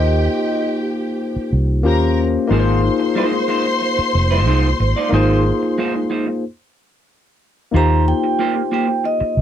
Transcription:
0.00 0.27 D#2 medium
0.00 1.80 A#3 medium
0.00 1.80 D#4 medium
0.00 1.81 F4 medium
0.00 1.49 G4 loud
0.00 1.82 G4 medium
0.00 1.83 C5 medium
0.00 0.67 D#5 medium
0.00 1.49 G5 loud
1.36 muted fingered electric bass stroke soft
1.53 1.86 C2 medium
1.83 2.36 D#2 loud
1.83 2.46 A#3 medium
1.83 2.50 C#4 medium
1.83 2.49 F4 medium
1.83 2.51 G4 medium
1.83 2.17 A#4 medium
1.83 2.51 C5 medium
1.83 2.17 A#5 loud
2.47 2.89 G#1 loud
2.47 2.81 G#3 medium
2.47 5.07 A#3 medium
2.47 5.07 D#4 medium
2.47 5.08 F4 medium
2.47 6.06 C5 loud
2.47 6.06 C6 loud
2.51 2.81 D#4 medium
2.51 2.81 F4 medium
2.51 5.09 G#4 medium
2.51 2.58 A#4 medium
2.51 2.81 C5 medium
2.60 5.13 C5 medium
3.00 muted clean electric guitar stroke soft
3.15 3.37 G#3 medium
3.15 3.32 D#4 medium
3.15 3.32 F4 medium
3.15 3.31 C5 medium
3.32 muted clean electric guitar stroke soft
3.48 3.65 G#3 medium
3.48 3.65 D#4 medium
3.48 3.65 F4 soft
3.48 3.64 C5 medium
3.65 muted clean electric guitar stroke soft
3.81 muted clean electric guitar stroke soft
3.98 muted clean electric guitar stroke soft
3.98 muted fingered electric bass stroke soft
4.15 4.47 F1 medium
4.31 4.45 G#3 medium
4.31 4.46 D#4 medium
4.31 4.46 F4 medium
4.31 4.47 C5 medium
4.46 4.72 C2 medium
4.46 4.68 G#3 medium
4.46 4.68 D#4 medium
4.46 4.68 F4 medium
4.46 4.69 C5 medium
4.79 4.92 G#1 medium
4.79 muted clean electric guitar stroke soft
4.96 5.11 G#3 soft
4.96 5.12 D#4 soft
4.96 5.12 F4 medium
4.96 5.13 D5 medium
5.09 5.50 G#1 medium
5.09 5.42 G#3 medium
5.09 6.39 A#3 medium
5.09 6.39 D#4 medium
5.09 6.40 F4 medium
5.13 5.43 D#4 medium
5.13 5.43 F4 medium
5.13 6.41 G#4 medium
5.13 5.43 C5 medium
5.13 6.42 C5 medium
5.62 muted clean electric guitar stroke soft
5.78 5.99 G#3 medium
5.78 5.94 D#4 medium
5.78 5.94 F4 medium
5.78 5.93 C5 medium
5.94 muted clean electric guitar stroke soft
6.10 6.27 G#3 medium
6.10 6.27 D#4 soft
6.10 6.26 F4 medium
6.10 6.25 C5 medium
6.27 muted clean electric guitar stroke soft
7.71 8.12 D#2 medium
7.71 9.41 A#3 medium
7.71 8.04 A#3 medium
7.71 9.41 D#4 medium
7.71 9.41 F4 medium
7.71 8.04 F4 medium
7.76 8.05 G4 medium
7.76 9.41 G4 medium
7.76 8.05 C5 medium
7.76 9.41 C5 medium
7.76 8.06 A#5 loud
8.08 8.73 G5 loud
8.24 muted clean electric guitar stroke soft
8.39 8.60 A#3 medium
8.39 8.55 F4 medium
8.39 8.55 G4 medium
8.39 8.54 C5 medium
8.55 muted clean electric guitar stroke soft
8.71 8.88 A#3 medium
8.71 8.87 F4 medium
8.71 8.87 G4 medium
8.71 8.86 C5 medium
8.71 9.03 G5 medium
8.87 muted clean electric guitar stroke soft
9.04 9.41 D#5 loud
9.04 muted clean electric guitar stroke soft
9.20 muted clean electric guitar stroke soft
9.20 muted fingered electric bass stroke soft
9.37 9.41 C2 medium

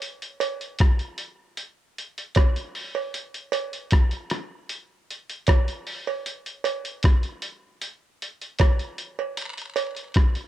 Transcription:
0.02 closed hi-hat medium
0.22 closed hi-hat medium
0.40 closed hi-hat medium
0.40 cowbell medium
0.61 closed hi-hat medium
0.79 kick loud
0.79 cross-stick loud
0.79 closed hi-hat loud
0.99 closed hi-hat soft
1.18 closed hi-hat medium
1.57 closed hi-hat medium
1.98 closed hi-hat medium
2.18 closed hi-hat medium
2.35 kick loud
2.35 cross-stick loud
2.35 closed hi-hat loud
2.35 cowbell medium
2.56 closed hi-hat medium
2.75 open hi-hat medium
2.95 cowbell medium
3.14 closed hi-hat loud
3.34 closed hi-hat medium
3.52 closed hi-hat medium
3.52 cowbell medium
3.73 closed hi-hat medium
3.91 kick loud
3.91 cross-stick loud
3.91 closed hi-hat loud
4.11 closed hi-hat medium
4.30 cross-stick medium
4.30 closed hi-hat medium
4.69 closed hi-hat medium
5.11 closed hi-hat medium
5.30 closed hi-hat medium
5.47 kick loud
5.47 cross-stick loud
5.47 closed hi-hat loud
5.47 cowbell medium
5.68 closed hi-hat medium
5.87 open hi-hat medium
6.07 cowbell medium
6.26 closed hi-hat medium
6.46 closed hi-hat medium
6.64 closed hi-hat medium
6.64 cowbell medium
6.85 closed hi-hat medium
7.03 kick loud
7.03 cross-stick loud
7.03 closed hi-hat loud
7.23 closed hi-hat medium
7.42 closed hi-hat medium
7.82 closed hi-hat loud
8.22 closed hi-hat medium
8.41 closed hi-hat medium
8.59 kick loud
8.59 cross-stick loud
8.59 closed hi-hat loud
8.59 cowbell medium
8.79 closed hi-hat medium
8.98 closed hi-hat medium
9.19 cowbell medium
9.37 closed hi-hat loud
9.37 vibraslap medium
9.58 closed hi-hat medium
9.76 closed hi-hat medium
9.76 cowbell medium
9.96 closed hi-hat medium
10.14 kick loud
10.14 cross-stick loud
10.14 closed hi-hat loud
10.35 closed hi-hat soft

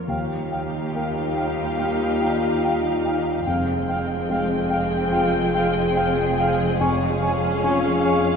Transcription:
0.00 0.11 F2 soft
0.00 0.11 F4 soft
0.00 0.11 A#4 soft
0.08 3.43 D#2 soft
0.08 3.44 D#2 soft
0.08 3.44 G3 medium
0.08 3.44 D#4 soft
0.08 3.44 F4 medium
0.08 3.43 G4 medium
0.08 0.25 F5 soft
0.08 3.44 F5 medium
0.08 0.19 G5 soft
0.52 0.68 F5 soft
0.52 0.61 G5 soft
0.95 2.29 A#3 soft
0.95 1.11 F5 soft
0.95 1.05 G5 soft
1.37 1.54 F5 soft
1.37 1.46 G5 soft
1.79 3.44 F4 soft
1.79 3.44 G4 soft
1.79 1.96 F5 soft
1.79 1.88 G5 soft
2.22 2.38 F5 soft
2.22 2.31 G5 soft
2.64 2.80 F5 soft
2.64 2.74 G5 soft
3.05 3.23 F5 soft
3.05 3.15 G5 soft
3.46 8.36 F1 medium
3.46 6.77 F2 medium
3.46 8.36 F2 medium
3.46 8.36 G#3 medium
3.46 6.77 C4 medium
3.46 6.63 G#4 medium
3.46 8.36 G#4 medium
3.46 3.65 F5 medium
3.46 3.56 G5 soft
3.46 6.77 G5 medium
3.89 4.06 F5 soft
3.89 3.98 G5 soft
4.29 5.62 G#3 soft
4.29 4.48 F5 soft
4.29 4.39 G5 soft
4.70 4.88 F5 soft
4.70 4.80 G5 soft
5.12 6.76 F4 soft
5.12 5.29 F5 medium
5.12 5.22 G5 soft
5.12 6.77 G5 soft
5.54 5.71 F5 medium
5.54 5.64 G5 medium
5.96 6.13 F5 medium
5.96 6.05 G5 medium
6.38 6.55 F5 medium
6.38 6.48 G5 medium
6.80 8.36 F2 medium
6.80 8.36 C#4 medium
6.80 8.36 G#4 medium
6.80 6.97 C#5 medium
6.80 8.36 F5 medium
6.80 6.90 G#5 medium
7.22 7.38 C#5 medium
7.22 7.31 G#5 medium
7.63 8.36 C#4 soft
7.63 8.36 F4 medium
7.63 7.79 C#5 medium
7.63 7.72 G#5 medium
8.04 8.20 C#5 medium
8.04 8.14 G#5 medium

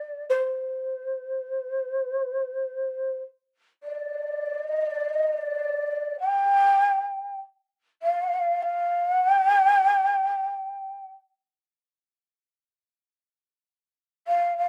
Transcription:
0.00 0.25 D5 medium
0.29 3.19 C5 medium
3.83 4.66 D5 medium
4.66 4.89 D#5 medium
4.89 5.13 D5 medium
5.13 5.36 D#5 medium
5.36 6.18 D5 medium
6.19 7.38 G5 loud
8.02 8.62 F5 medium
8.62 9.06 F5 loud
9.06 9.35 F#5 loud
9.35 11.09 G5 loud
14.27 14.56 F5 medium
14.58 14.69 F5 medium

